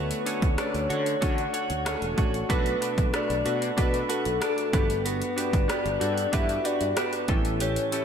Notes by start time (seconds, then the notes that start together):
Already playing: D2 D3 A3 C#4 D4 F#4 A4 B4 C#5
0.11 closed hi-hat
0.26 C#4 D4 F#4 A4 C#5, closed hi-hat
0.42 D2, kick, closed hi-hat
0.58 A3 D4 F#4 A4 C#5 D5, cross-stick, closed hi-hat
0.74 D2, closed hi-hat
0.89 D3 D4 F#4 A4 C#5, closed hi-hat
1.06 closed hi-hat
1.21 D3 C#4 D4 F#4 A4 C#5 F#5, kick, closed hi-hat
1.38 closed hi-hat
1.53 D4 F#4 A4 C#5, closed hi-hat
1.70 D2, closed hi-hat
1.85 C#4 D4 F#4 A4 C#5, cross-stick, closed hi-hat
2.02 E1, closed hi-hat
2.17 A1 D4 F#4 A4 C#5, kick, closed hi-hat
2.34 closed hi-hat
2.49 B1 B2 A3 D4 F#4 A4 B4, kick, closed hi-hat
2.66 closed hi-hat
2.81 D4 F#4 A4 B4, closed hi-hat
2.98 B1, kick, closed hi-hat
3.13 A3 D4 F#4 A4 B4 D5, cross-stick, closed hi-hat
3.30 B1, closed hi-hat
3.45 B2 D4 F#4 A4 B4, closed hi-hat
3.62 closed hi-hat
3.77 B2 D4 F#4 A4 B4, kick, closed hi-hat
3.94 closed hi-hat
4.09 D4 F#4 A4 B4, closed hi-hat
4.25 B1, closed hi-hat
4.40 D4 F#4 A4 D5, cross-stick, closed hi-hat
4.58 closed hi-hat
4.73 G1 G2 B3 D4 F#4 G4 B4, kick, closed hi-hat
4.90 closed hi-hat
5.05 B3 F#4 B4, closed hi-hat
5.22 closed hi-hat
5.36 D4 F#4 G4 B4, closed hi-hat
5.53 G1, kick, closed hi-hat
5.68 B3 D4 F#4 G4 B4 D5, cross-stick, closed hi-hat
5.85 G1, closed hi-hat
6.00 G2 D4 F#4 G4 A4, closed hi-hat
6.18 closed hi-hat
6.32 G2 D4 F#4 G4 B4 E5, kick, closed hi-hat
6.49 closed hi-hat
6.64 D4 F#4 G4 B4 D5, closed hi-hat
6.81 G2, closed hi-hat
6.96 D4 F#4 G4 B4, cross-stick, closed hi-hat
7.13 closed hi-hat
7.28 A1 A2 E3 C#4 E4 G4 A4, kick, closed hi-hat
7.45 closed hi-hat
7.60 E3 G4 C#5, closed hi-hat
7.76 closed hi-hat
7.92 C#4 E4 G4 A4, closed hi-hat